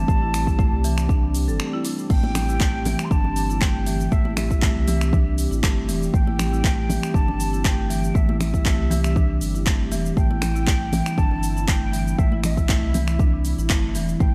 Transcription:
Already playing: analog synth pad G3 C4 G4, flute A5
0.08 sub bass A1, marimba A3, kick, shaker
0.22 marimba E4
0.34 finger snap, open hi-hat, shaker
0.47 marimba E4, kick, shaker
0.59 marimba A3, kick, shaker
0.73 sub bass C2
0.84 marimba E3, open hi-hat, shaker
0.98 finger snap, shaker
1.09 marimba D4, kick, shaker
1.23 marimba D4
1.34 open hi-hat, shaker
1.48 sub bass G1, marimba A4, shaker
1.60 marimba A3, finger snap, shaker
1.73 marimba E4
1.85 marimba D4, open hi-hat, shaker
1.99 shaker
2.10 sub bass A1, marimba A3, analog synth pad G4, flute G5, kick, crash, high conga, shaker
2.24 marimba E4, high conga
2.35 finger snap, open hi-hat, low conga, shaker
2.49 marimba E4, shaker
2.60 marimba A3, kick, clap, shaker
2.85 marimba E3, open hi-hat, high conga, low conga, shaker
2.99 finger snap, shaker
3.04 flute C6
3.11 sub bass G1, marimba D4, flute A5, kick, high conga, shaker
3.24 marimba D4, low conga
3.36 open hi-hat, shaker
3.50 marimba E4, shaker
3.61 marimba A3, flute G5, finger snap, kick, clap, shaker
3.86 marimba E3, open hi-hat, shaker
4.00 shaker
4.12 sub bass A1, marimba A3, flute E5, kick, high conga, shaker
4.25 marimba E4, high conga
4.37 flute E5, finger snap, open hi-hat, low conga, shaker
4.51 marimba E4, kick, shaker
4.62 marimba A3, kick, clap, shaker
4.76 sub bass C2
4.87 marimba E3, open hi-hat, high conga, low conga, shaker
5.01 finger snap, shaker
5.13 marimba D4, kick, low conga, shaker
5.26 marimba D4
5.38 open hi-hat, shaker
5.51 sub bass A1, marimba E4, shaker
5.63 sub bass G1, marimba A3, finger snap, kick, clap, shaker
5.88 sub bass E1, marimba E3, open hi-hat, high conga, shaker
6.03 shaker
6.13 sub bass A1, marimba A3, flute G5, kick, high conga, shaker
6.27 marimba E4, high conga
6.39 finger snap, open hi-hat, low conga, shaker
6.53 marimba E4, shaker
6.64 marimba A3, kick, clap, shaker
6.89 marimba E3, open hi-hat, high conga, low conga, shaker
7.03 finger snap, shaker
7.14 sub bass G1, marimba D4, flute A5, kick, high conga, shaker
7.28 marimba D4, low conga
7.40 open hi-hat, shaker
7.53 marimba E4, shaker
7.65 marimba A3, flute G5, finger snap, kick, clap, shaker
7.90 marimba E3, open hi-hat, shaker
8.04 shaker
8.15 sub bass A1, marimba A3, flute E5, kick, high conga, shaker
8.29 marimba E4, high conga
8.41 flute E5, finger snap, open hi-hat, low conga, shaker
8.54 marimba E4, kick, shaker
8.65 marimba A3, kick, clap, shaker
8.79 sub bass C2
8.91 marimba E3, open hi-hat, high conga, low conga, shaker
9.04 finger snap, shaker
9.16 marimba D4, kick, low conga, shaker
9.29 marimba D4
9.41 sub bass G1, open hi-hat, shaker
9.55 marimba E4, shaker
9.66 marimba A3, finger snap, kick, clap, shaker
9.92 sub bass E1, marimba E3, open hi-hat, high conga, shaker
10.06 shaker
10.17 sub bass A1, marimba A3, analog synth pad E4, flute G5, kick, high conga, shaker
10.31 marimba E4, high conga
10.42 finger snap, open hi-hat, low conga, shaker
10.56 marimba E4, shaker
10.67 marimba A3, kick, clap, shaker
10.93 marimba E3, open hi-hat, high conga, low conga, shaker
11.06 finger snap, shaker
11.18 sub bass G1, marimba D4, flute A5, kick, high conga, shaker
11.31 marimba D4, low conga
11.43 open hi-hat, shaker
11.57 marimba E4, shaker
11.68 marimba A3, flute G5, finger snap, kick, clap, shaker
11.93 marimba E3, open hi-hat, shaker
12.07 shaker
12.18 sub bass A1, marimba A3, flute E5, kick, high conga, shaker
12.32 marimba E4, high conga
12.44 flute E5, finger snap, open hi-hat, low conga, shaker
12.57 marimba E4, kick, shaker
12.69 marimba A3, kick, clap, shaker
12.83 sub bass C2
12.94 marimba E3, open hi-hat, high conga, low conga, shaker
13.08 finger snap, shaker
13.19 marimba D4, kick, low conga, shaker
13.33 marimba D4
13.45 open hi-hat, shaker
13.58 sub bass A1, marimba E4, shaker
13.70 sub bass G1, marimba A3, finger snap, kick, clap, shaker
13.95 sub bass E1, marimba E3, open hi-hat, high conga, shaker
14.09 shaker
14.20 sub bass A1, marimba A3, flute G5, kick, high conga, shaker

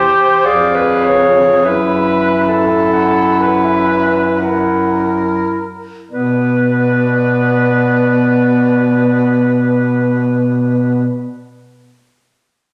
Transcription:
Already playing: baritone saxophone E2, clarinet G4 G5, alto saxophone C5
0.45 baritone saxophone F2, clarinet G#4 F5, alto saxophone D5
0.75 alto saxophone B4
1.04 alto saxophone C#5
1.65 baritone saxophone F#2, clarinet E4 E5, alto saxophone B4
2.48 alto saxophone A4
2.93 clarinet F#5
3.41 alto saxophone B4
3.64 clarinet E5
4.40 clarinet E4 F#5, alto saxophone A#4
6.11 baritone saxophone B2, clarinet B3 D5, alto saxophone B4

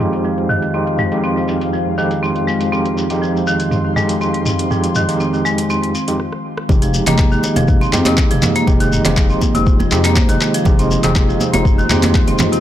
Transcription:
Already playing: ambient pad F4 C5 F5
0.00 tine electric piano F2 G#3 D#4 G4, marimba C4, mid tom, shekere
0.13 closed hi-hat, shekere
0.24 marimba F3, shekere
0.38 closed hi-hat
0.49 marimba D#3, mid tom, shekere
0.62 closed hi-hat, shekere
0.74 tine electric piano F2 G#3 D#4 G4, marimba C4, shekere
0.87 closed hi-hat
0.99 marimba G#3, mid tom, shekere
1.12 tine electric piano F2 G#3 D#4 G4, closed hi-hat, shekere
1.23 marimba C4, shekere
1.37 shekere
1.48 marimba C4, shekere
1.61 closed hi-hat, shekere
1.73 marimba F3, shekere
1.98 tine electric piano F2 G#3 D#4 G4, marimba D#3, shekere
2.11 closed hi-hat, shekere
2.23 marimba C4, shekere
2.36 closed hi-hat
2.47 marimba G#3, shekere
2.61 closed hi-hat, shekere
2.72 tine electric piano F2 G#3 D#4 G4, marimba C4, ambient pad C6, shekere
2.85 closed hi-hat
2.97 marimba C4, shekere
3.10 tine electric piano F2 G#3 D#4 G4, closed hi-hat, shekere
3.22 marimba F3, shekere
3.37 shekere
3.47 marimba D#3, shekere
3.60 closed hi-hat, shekere
3.71 marimba C4, mid tom, shekere
3.96 tine electric piano F2 G#3 D#4 G4, marimba G#3, mid tom, shekere
4.09 closed hi-hat, shekere
4.21 marimba C4, shekere
4.34 closed hi-hat
4.46 marimba C4, mid tom, shekere
4.59 closed hi-hat, shekere
4.71 tine electric piano F2 G#3 D#4 G4, marimba F3, mid tom, shekere
4.83 closed hi-hat, shekere
4.95 marimba D#3, mid tom, shekere
5.09 tine electric piano F2 G#3 D#4 G4, closed hi-hat, shekere
5.20 marimba C4, shekere
5.34 shekere
5.45 marimba G#3, shekere
5.58 closed hi-hat, shekere
5.70 marimba C4, shekere
5.83 closed hi-hat
5.95 marimba C4, shekere
6.08 tine electric piano F2 G#3 D#4 G4, closed hi-hat, shekere
6.20 cross-stick
6.33 cross-stick
6.58 cross-stick
6.69 analog synth bass F1, tine electric piano G#3 D#4 G4, ambient pad F4 C5 D#5, kick, muted conga, low conga, shekere
6.82 marimba F3, closed hi-hat, shekere
6.94 shekere
7.07 analog synth bass F1, tine electric piano G#3 D#4 G4, marimba A#3, clap, closed hi-hat, muted conga, low conga, shekere
7.18 kick, clap, high conga, shekere
7.32 marimba D#3, shekere
7.43 muted conga, high conga, shekere
7.56 analog synth bass F1, marimba F3, closed hi-hat, high conga, shekere
7.68 kick, mid tom, shekere
7.81 marimba C4, muted conga, shekere
7.93 analog synth bass F2, tine electric piano G#3 D#4 G4, clap, mid tom, shekere
8.05 marimba C3, clap, closed hi-hat, high conga, shekere
8.17 kick, clap, shekere
8.31 analog synth bass F1, marimba F3, closed hi-hat, muted conga, shekere
8.42 clap, mid tom, high conga, low conga, shekere
8.55 marimba A#3, closed hi-hat, shekere
8.67 analog synth bass F1, tine electric piano G#3 D#4 G4, kick, muted conga, shekere
8.80 marimba D#3, closed hi-hat, shekere
8.92 mid tom, shekere
9.05 analog synth bass F1, marimba F3, tine electric piano G#3 D#4 G4, clap, closed hi-hat, muted conga, low conga, shekere
9.17 kick, clap, shekere
9.29 marimba C4, shekere
9.41 kick, muted conga, high conga, shekere
9.55 analog synth bass F1, marimba C3, closed hi-hat, high conga, shekere
9.66 kick, shekere
9.80 marimba F3, muted conga, high conga, shekere
9.91 analog synth bass F2, tine electric piano G#3 D#4 G4, clap, shekere
10.04 marimba A#3, clap, closed hi-hat, shekere
10.16 kick, clap, high conga, shekere
10.29 analog synth bass F1, marimba D#3, closed hi-hat, muted conga, shekere
10.41 clap, shekere
10.54 marimba F3, closed hi-hat, shekere
10.65 analog synth bass F1, tine electric piano G#3 D#4 G4, ambient pad C6, kick, muted conga, low conga, shekere
10.79 marimba C4, closed hi-hat, shekere
10.91 shekere
11.04 analog synth bass F1, marimba C3, tine electric piano G#3 D#4 G4, clap, closed hi-hat, muted conga, low conga, shekere
11.16 kick, clap, high conga, shekere
11.29 marimba F3, shekere
11.41 muted conga, high conga, shekere
11.53 analog synth bass F1, marimba A#3, closed hi-hat, high conga, shekere
11.65 kick, mid tom, shekere
11.78 marimba D#3, muted conga, shekere
11.90 analog synth bass F2, tine electric piano G#3 D#4 G4, clap, mid tom, shekere
12.03 marimba F3, clap, closed hi-hat, high conga, shekere
12.15 kick, clap, shekere
12.27 analog synth bass F1, marimba C4, closed hi-hat, muted conga, shekere
12.38 clap, mid tom, high conga, low conga, shekere
12.52 marimba C3, closed hi-hat, shekere

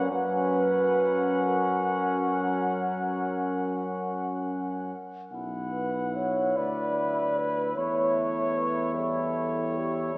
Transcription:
0.10 tuba F#2, euphonium F#3, trombone section C#4, french horn section B4, cornet F#5
1.42 french horn section A#4
5.31 tuba B1, trombone section E4, cornet F#5
5.72 french horn section B4
6.15 french horn section C#5
6.56 tuba D2, cornet B4, french horn section D5
7.39 french horn section B4
7.73 tuba E2, euphonium A3, french horn section C#5
7.78 cornet C#5
8.54 french horn section B4
8.94 euphonium G3, french horn section A4, cornet C#5
9.78 french horn section G4
10.15 trombone section D4

